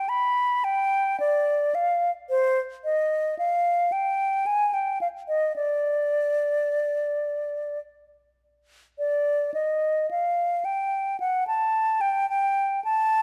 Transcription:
0.00 0.10 G5 medium
0.09 0.66 B5 medium
0.64 1.19 G5 medium
1.20 1.76 D5 medium
1.75 2.11 F5 medium
2.30 2.60 C5 medium
2.84 3.38 D#5 medium
3.39 3.94 F5 medium
3.92 4.48 G5 medium
4.46 4.75 G#5 medium
4.74 5.01 G5 medium
5.01 5.08 F5 medium
5.28 5.55 D#5 medium
5.56 7.79 D5 medium
8.99 9.51 D5 medium
9.54 10.09 D#5 soft
10.11 10.66 F5 medium
10.65 11.19 G5 medium
11.20 11.47 F#5 medium
11.47 12.02 A5 medium
12.01 12.29 G5 medium
12.30 12.83 G5 medium
12.85 13.22 A5 medium

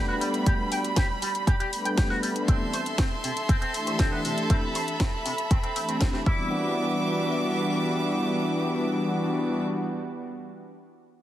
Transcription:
0.00 0.43 G3 medium
0.00 2.44 G3 medium
0.00 0.43 A3 medium
0.00 0.43 B3 medium
0.00 0.44 D4 medium
0.00 2.44 B5 medium
0.08 0.15 F#4 medium
0.21 0.27 G3 medium
0.21 open hi-hat loud
0.34 closed hi-hat soft
0.46 0.59 G3 medium
0.46 0.59 A3 medium
0.46 0.59 B3 medium
0.46 0.59 D4 medium
0.46 0.60 F#4 medium
0.46 0.53 G4 medium
0.46 kick loud
0.46 closed hi-hat medium
0.72 0.78 G5 medium
0.72 open hi-hat loud
0.84 closed hi-hat soft
0.96 1.06 G4 medium
0.96 kick medium
0.96 snare loud
0.96 closed hi-hat medium
1.22 1.28 G3 medium
1.22 open hi-hat loud
1.35 closed hi-hat soft
1.47 1.54 G4 medium
1.47 kick loud
1.47 closed hi-hat medium
1.60 1.69 G4 medium
1.60 closed hi-hat soft
1.72 2.45 G3 medium
1.72 2.45 A3 medium
1.72 2.45 B3 medium
1.72 2.45 D4 medium
1.72 open hi-hat loud
1.85 1.89 G5 medium
1.85 closed hi-hat medium
1.98 2.07 G4 medium
1.98 kick medium
1.98 snare loud
1.98 closed hi-hat medium
2.10 2.17 F#4 medium
2.10 snare soft
2.23 2.29 G3 medium
2.23 open hi-hat medium
2.36 closed hi-hat soft
2.48 2.61 E3 medium
2.48 2.61 A3 medium
2.48 2.54 C4 medium
2.48 2.61 C4 medium
2.48 2.61 D4 medium
2.48 2.61 G4 medium
2.48 6.23 A4 medium
2.48 6.23 E5 medium
2.48 4.48 C6 medium
2.48 kick loud
2.48 closed hi-hat medium
2.73 2.80 C5 medium
2.73 open hi-hat medium
2.86 closed hi-hat soft
2.98 3.08 C4 medium
2.98 kick medium
2.98 snare loud
2.98 closed hi-hat medium
3.24 3.30 C3 medium
3.24 open hi-hat medium
3.37 closed hi-hat medium
3.49 3.55 C4 medium
3.49 kick loud
3.49 closed hi-hat medium
3.61 3.71 C4 medium
3.61 closed hi-hat soft
3.73 4.46 E3 medium
3.73 4.47 A3 medium
3.73 4.47 D4 medium
3.73 4.47 G4 medium
3.73 open hi-hat loud
3.87 3.91 C5 medium
3.87 closed hi-hat medium
3.99 4.09 C4 medium
3.99 kick medium
3.99 snare medium
3.99 closed hi-hat medium
4.12 4.18 B3 medium
4.25 4.31 C3 medium
4.25 open hi-hat medium
4.38 closed hi-hat soft
4.50 4.63 E3 medium
4.50 4.63 A3 medium
4.50 4.56 C4 medium
4.50 4.63 C4 medium
4.50 4.63 D4 medium
4.50 4.63 G4 medium
4.50 6.25 B5 medium
4.50 kick loud
4.50 closed hi-hat medium
4.75 4.81 C5 medium
4.75 open hi-hat medium
4.88 closed hi-hat medium
5.00 5.10 C4 medium
5.00 kick medium
5.00 snare loud
5.00 closed hi-hat medium
5.26 5.32 C3 medium
5.26 open hi-hat medium
5.38 closed hi-hat medium
5.51 5.57 C4 medium
5.51 kick loud
5.51 closed hi-hat medium
5.63 5.73 C4 medium
5.63 closed hi-hat soft
5.75 6.24 E3 medium
5.75 6.26 A3 medium
5.75 6.26 C4 medium
5.75 5.80 C4 medium
5.75 6.26 D4 medium
5.75 6.27 G4 medium
5.75 open hi-hat loud
5.89 5.95 C4 medium
5.89 closed hi-hat medium
6.01 6.07 C4 medium
6.01 kick medium
6.01 snare loud
6.01 closed hi-hat medium
6.13 6.18 C4 medium
6.13 snare soft
6.25 9.61 E3 medium
6.25 9.61 G3 medium
6.25 9.62 G3 medium
6.25 9.62 B3 medium
6.25 9.63 D4 medium
6.25 6.73 E4 medium
6.25 9.64 F#4 medium
6.25 9.62 E5 medium
6.25 9.62 D6 medium
6.25 kick loud

